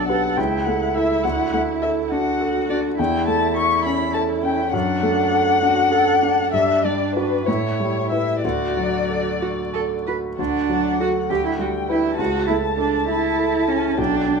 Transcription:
Already playing: B1 D4 A4
0.08 G4 B4 F#5
0.36 C#2 E4 G5
0.66 A3 F#5
0.95 E4 A4 E5
1.24 D2 F#5
1.53 A3 F#5
1.82 A4 E5
2.11 D4 F#4 F#5
2.41 A4
2.69 D4 D5
2.99 E2 E4 G5
3.28 A3 A5
3.56 A4 C#6
3.85 C#4 B5
4.14 A4 A5
4.43 C#4 G5
4.73 F#2 D4 F#5
5.03 A3
5.32 A4
5.62 D4 F#4
5.92 A4
6.21 D4
6.53 G2 E5
6.84 G3 D5
7.16 F#4 B4
7.46 A2 E4 C#5
7.80 G3
8.10 E4 B4 E5
8.42 D2 F#4 D5
8.77 F#3
9.09 A4
9.42 F#4
9.74 A4
10.07 F#4 B4
10.39 D2 D4 F#5
10.70 F#3
11.00 F#4 A4
11.29 D2 G4 G5
11.45 E4
11.59 G3 F#4
11.89 E4 B4
12.17 C#2 F#4 A5
12.47 A3 E4
12.77 D4 A4
13.08 E4
13.38 A4
13.68 C#4 E4
13.98 B1 D4 G5
14.28 D4

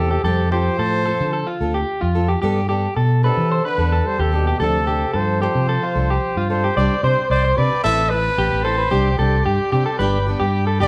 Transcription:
Already playing: E2 C3 A4
0.00 C4 E4
0.11 G4
0.23 F2 C3 G3 C4 G4 A4, muted steel-string acoustic guitar stroke
0.51 F3 C4 F4 G4 A4 C5
0.79 A2 A4
1.06 C4 F4 A4
1.20 D3
1.33 A4
1.47 F4
1.61 D2 C4 F4 A4
1.74 G4
2.01 F2 F4
2.15 C4 F4 A4
2.28 G4
2.42 G2 G3 B3 D4 G4 A4
2.68 B3 D4 G4 A4
2.96 B2 A4
3.24 C3 D4 A4 B4, muted steel-string acoustic guitar stroke
3.37 E3
3.52 C5
3.65 D3 B4
3.78 E2 B3 D4 A4
3.92 A4
4.06 G3 C5
4.19 D#2 C3 G4 A4
4.32 B2 B3 D4 G4 A4
4.47 G4
4.60 D2 C3 F3 C4 D4 A4
4.87 C4 D4 G4 A4
5.14 G2 F3 A4 C5
5.41 F3 C4 D4 G4 A4 C5
5.55 C3
5.69 A4
5.83 F4
5.95 C2 C4 D4 A4
6.10 G4
6.36 G2 F4
6.50 C4 D4 A4 C5
6.64 G4
6.77 C2 G3 C4 D4 G4 D5 G5 C6
7.03 C3 C4 D4 G4 C5
7.30 C2 C5 D5
7.45 C5
7.57 C3 C4 D4 G4 B4 D5
7.84 A1 C4 E4 A4 B4 E5 A5 B5
8.10 E4 B4
8.38 A1 G4
8.53 A1
8.64 E4 A4 B4 C5
8.78 B4
8.91 C2 G3 C4 D4 G4 D5 G5 C6
9.18 C2 C4 D4 G4 A4
9.46 G2 G4
9.72 C3 C4 D4 G4
9.86 A4
9.99 G1 G3 D4 G4 B4 B5, muted steel-string acoustic guitar stroke
10.27 B3 D4 G4
10.40 G2 G4
10.67 A4
10.80 G1 B3 D4 G4 D5

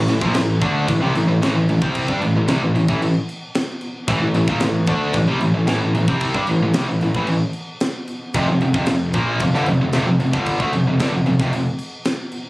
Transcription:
0.08 A1 A2 E3, crash
0.21 A#1 A#2 F3, kick
0.34 A1 A2 E3, snare, crash
0.61 D2 D3 A3 D4, kick, crash
0.88 A1 A2 E3, kick, crash
1.00 C2 C3 G3
1.14 A1 A2 E3, crash
1.27 A1 A2 E3
1.41 A1 A2 E3, snare, crash
1.55 A1 A2 E3
1.67 A1 A2 E3, crash
1.81 C2 C3 G3 C4, kick
1.95 kick, crash
2.08 G2 G3 D4, kick
2.21 A1 A2 E3, crash
2.35 A1 A2 E3
2.47 C2 C3 G3, snare, crash
2.62 A1 A2 E3
2.74 A1 A2 E3, crash
2.88 A1 A2 E3, kick
3.01 A1 A2 E3, crash
3.29 crash
3.55 snare, crash
3.81 crash
4.08 A1 A2 E3, kick, crash
4.21 A1 A2 E3
4.34 A1 A2 E3, crash
4.47 A#1 A#2 F3, kick
4.60 A1 A2 E3, snare, crash
4.86 D2 D3 A3 D4, kick, crash
5.13 A1 A2 E3, kick, crash
5.27 C2 C3 G3
5.41 A1 A2 E3, crash
5.54 A1 A2 E3
5.67 A1 A2 E3, snare, crash
5.80 A1 A2 E3
5.94 A1 A2 E3, crash
6.08 C2 C3 G3 C4, kick
6.21 kick, crash
6.34 G2 G3 D4, kick
6.47 A1 A2 E3, crash
6.61 A1 A2 E3
6.74 C2 C3 G3, snare, crash
6.88 A1 A2 E3
7.01 A1 A2 E3, crash
7.14 A1 A2 E3, kick
7.27 A1 A2 E3, crash
7.53 crash
7.80 snare, crash
8.08 crash
8.34 F1 F2 C3, kick, crash
8.48 F1 F2 C3
8.61 F1 F2 C3, crash
8.74 F1 F2 C3, kick
8.86 F1 F2 C3, snare, crash
9.13 A#1 A#2 F3 A#3, kick, crash
9.40 F1 F2 C3, kick, crash
9.54 G1 G2 D3, snare
9.66 F1 F2 C3, crash
9.80 F1 F2 C3
9.93 F1 F2 C3, snare, crash
10.07 F1 F2 C3
10.20 F1 F2 C3, crash
10.33 G1 G2 D3 G3, kick
10.46 kick, crash
10.60 D2 D3 A3, kick
10.72 F1 F2 C3, crash
10.86 F1 F2 C3
10.99 G1 G2 D3, snare, crash
11.13 F1 F2 C3
11.26 F1 F2 C3, crash
11.40 F1 F2 C3, kick, snare
11.53 F1 F2 C3, crash
11.79 crash
12.05 snare, crash
12.32 crash

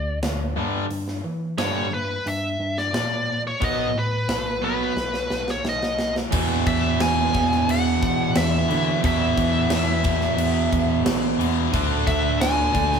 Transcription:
Already playing: D2 D5
0.23 D2, snare, open hi-hat
0.56 G2 D3 G3
0.91 G2, open hi-hat
1.08 snare
1.24 E3
1.58 G2 D3 G3 C#5, snare, open hi-hat
1.94 B4
2.26 G2 E5, open hi-hat
2.60 G2
2.78 D5, snare
2.93 A#2, snare, open hi-hat
3.47 C#5
3.61 B1 B2 F#3 B3 D#5, kick, open hi-hat
3.95 A2 B4
4.29 B1, snare, open hi-hat
4.62 B2 F#3 B3 B4
4.97 B1, snare
5.14 snare
5.30 B1, snare
5.48 C#5, snare
5.64 B1, snare
5.69 D#5
5.83 snare
5.99 snare
6.16 snare
6.31 E2 B2 E3, kick, crash
6.66 E2 E5, kick, crash
6.99 E2 G#5, snare, crash
7.33 E2 B2 E3, kick, crash
7.52 snare
7.68 E2 F#5, crash
8.02 B2, kick, crash
8.36 E2 E5, snare, crash
8.68 E2 B2 D3 E3, crash
9.02 E2 B2 E3 E5, kick, crash
9.37 E2, kick, crash
9.70 E2, snare, crash
10.04 E2 B2 E3, kick, crash
10.21 snare
10.37 E2, crash
10.73 E2, kick, crash
11.05 B1, snare, crash
11.39 E2 B2 E3, crash
11.72 D2 D3 A3 D4, kick, crash
12.07 D2 E5, kick, crash
12.39 D2 G#5, snare, crash
12.73 D2 D3 A3 D4, kick, crash
12.92 snare

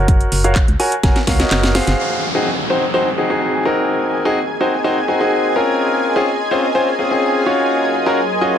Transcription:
Already playing: F#1 F#4 A#4 C#5 F#5
0.08 kick, closed hi-hat
0.21 closed hi-hat
0.32 F#1, open hi-hat
0.44 F#4 A#4 C#5 F5, closed hi-hat
0.55 kick, clap, closed hi-hat
0.68 C#2, closed hi-hat
0.80 F#4 A#4 C#5 G#5, open hi-hat
0.92 closed hi-hat
1.03 F#1 F#4 A#4 C#5 G#5, kick, snare, closed hi-hat
1.16 snare, closed hi-hat
1.27 C#2 F#4 A#4 C#5 F5, kick, snare, open hi-hat
1.40 F#4 A#4 C#5 D#5, snare, closed hi-hat
1.51 F#1, snare, clap, closed hi-hat
1.63 snare, closed hi-hat
1.75 F#4 G#4 C5 F5, snare, open hi-hat
1.87 F#1, snare, closed hi-hat
1.99 G#4 A#4 G#5, downlifter
2.21 D#5
2.35 C4 D#4 F#4 G#4
2.70 C4 D#4 F#4 C5
2.94 C4 D#4 F#4 C5
3.07 C6
3.13 G#5
3.18 C4 D#4 F#4 G#4
3.30 C4 D#4 F#4 G#4
3.65 C4 D#4 F#4 A#4
4.25 C4 D#4 F#4 G#4
4.61 C4 D#4 F#4 C5
4.84 C4 D#4 F#4 C5
5.08 C4 D#4 F#4 G#4
5.21 C4 D#4 F#4 G#4
5.56 C4 C#4 F4 A#4
6.16 C4 C#4 F4 G#4
6.51 C4 C#4 F4 C5
6.75 C4 C#4 F4 C5
6.99 C4 C#4 F4 G#4
7.11 C4 C#4 F4 G#4
7.46 F#3 C#4 F4 F#4 C#5
8.06 C#4 F4 F#4 A#4
8.41 C#4 F4 F#4 D#5

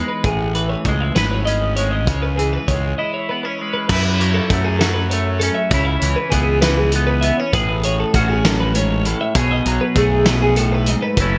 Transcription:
Already playing: E2 E3 G#3 D#4 G#4
0.08 B4
0.24 A1 A2 G#4, kick, closed hi-hat
0.55 E3 B4, closed hi-hat
0.69 C#5
0.85 C#2 G#3 D#5, kick, closed hi-hat
1.01 E5
1.15 G#1 B4, snare, closed hi-hat
1.31 C#5
1.45 C#4 D#5, closed hi-hat
1.76 G#3 C#5, closed hi-hat
1.91 D#5
2.07 C#2 C#3 C#5, kick, closed hi-hat
2.22 B4
2.37 E3 G#4, closed hi-hat
2.53 B4
2.68 C#2 G#3 C#5, kick, closed hi-hat
2.98 E4 D#5
3.14 C#5
3.29 B3 B4
3.43 C#4 C#5
3.59 G#3 B4
3.73 B4
3.89 F#2 E4 B4, kick, crash
4.19 F#3 C#5, closed hi-hat
4.34 A4
4.50 F#2 A3 F#4, kick, closed hi-hat
4.64 G#4
4.79 F#3 A4, snare, closed hi-hat
4.94 B4
5.10 A3 C#5, closed hi-hat
5.40 C#4 A4, closed hi-hat
5.55 E5
5.70 C#2 C#3 C#5, kick, closed hi-hat
5.74 E4
5.85 E5
6.00 C#2 E3 C#5, closed hi-hat
6.16 B4
6.30 C#2 B3 G#4, kick, closed hi-hat
6.61 E3 B4, snare, closed hi-hat
6.77 G#4
6.92 B3 A4, closed hi-hat
7.07 B4
7.21 B3 E5, closed hi-hat
7.37 C#4 C#5
7.53 A1 A2 G#4 B4, kick, closed hi-hat
7.83 C#5, closed hi-hat
8.00 A4
8.14 A1 C#4 F#4, kick, closed hi-hat
8.29 G#4
8.45 F#2 A4, snare, closed hi-hat
8.60 B4
8.75 G#2 C#5, closed hi-hat
9.05 A2 A4, closed hi-hat
9.21 E5
9.35 B1 B2 G#4 C#5, kick, closed hi-hat
9.51 D#5
9.66 B1 F#3 C#5, closed hi-hat
9.81 B4
9.96 B1 A3 G#4, kick, closed hi-hat
10.26 B2 B4, snare, closed hi-hat
10.42 G#4
10.56 A2 A4, closed hi-hat
10.72 B4
10.86 G#2 D#5, closed hi-hat
11.02 B4
11.17 F#1 F#2 F#3 A3 C#4 B4, kick, closed hi-hat
11.22 E4

